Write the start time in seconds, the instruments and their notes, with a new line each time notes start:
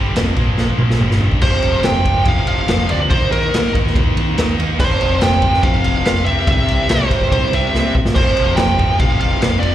Already playing: fingered electric bass G1, distorted electric guitar G2 D3 G3
0.16 fingered electric bass F1, distorted electric guitar F2 C3 F3, snare, ride
0.27 snare
0.36 fingered electric bass A#1, distorted electric guitar A#2 F3 A#3, kick, ride
0.58 snare
0.68 kick
0.79 mid tom
0.91 snare
1.00 fingered electric bass G1, distorted electric guitar G2 D3 G3, mid tom
1.11 snare
1.21 floor tom
1.32 kick
1.41 fingered electric bass F1, distorted electric guitar F2 C3 F3, lead electric guitar C5, kick, crash
1.62 fingered electric bass F1, ride
1.83 fingered electric bass F1, lead electric guitar G5, snare, ride
2.05 distorted electric guitar F2 C3 F3, kick, ride
2.25 fingered electric bass F1, lead electric guitar F5, kick, ride
2.47 fingered electric bass F1, lead electric guitar F5, ride
2.68 fingered electric bass F1, distorted electric guitar F2 C3 F3, snare, ride
2.89 fingered electric bass D2, distorted electric guitar F2 C3 F3, lead electric guitar D5, ride
3.10 fingered electric bass D#2, distorted electric guitar D#3 A#3 D#4, lead electric guitar C5, kick, ride
3.30 fingered electric bass D#2, lead electric guitar A#4, ride
3.54 fingered electric bass D#2, snare, ride
3.73 distorted electric guitar D#3 A#3 D#4, kick, ride
3.87 snare
3.95 fingered electric bass D#2, kick, ride
4.17 fingered electric bass D#2, ride
4.37 fingered electric bass D#2, distorted electric guitar D#3 A#3 D#4, snare, ride
4.58 fingered electric bass D#2, distorted electric guitar D#3 A#3 D#4, ride
4.79 fingered electric bass F1, distorted electric guitar F2 C3 F3, lead electric guitar C5, kick, crash
5.01 fingered electric bass F1, ride
5.21 fingered electric bass F1, lead electric guitar G5, snare, ride
5.42 distorted electric guitar F2 C3 F3, kick, ride
5.54 snare
5.63 fingered electric bass F1, lead electric guitar F5, kick, ride
5.84 fingered electric bass F1, lead electric guitar F5, ride
6.04 fingered electric bass F1, distorted electric guitar F2 C3 F3, lead electric guitar F5, snare, ride
6.26 fingered electric bass C2, distorted electric guitar C3 G3 C4, lead electric guitar E5, ride
6.47 fingered electric bass C2, lead electric guitar E5, kick, ride
6.68 fingered electric bass C2, ride
6.89 fingered electric bass C2, distorted electric guitar C3 G3 C4, lead electric guitar C5, snare, ride
7.11 kick, ride
7.21 kick
7.32 fingered electric bass C2, lead electric guitar C5, kick, ride
7.52 fingered electric bass C2, distorted electric guitar C3 G3 C4, lead electric guitar E5, ride
7.73 fingered electric bass C2, distorted electric guitar C3 G3 C4, snare
7.95 fingered electric bass C2, kick
8.06 snare
8.15 fingered electric bass F1, distorted electric guitar F2 C3 F3, lead electric guitar C5, kick, crash
8.37 fingered electric bass F1, ride
8.56 fingered electric bass F1, lead electric guitar G5, snare, ride
8.78 distorted electric guitar F2 C3 F3, kick, ride
9.00 fingered electric bass F1, lead electric guitar F5, kick, ride
9.20 fingered electric bass F1, lead electric guitar F5, ride
9.42 fingered electric bass F1, distorted electric guitar F2 C3 F3, snare, ride
9.60 fingered electric bass F1, distorted electric guitar C3 F3, lead electric guitar D5, ride
9.65 distorted electric guitar F2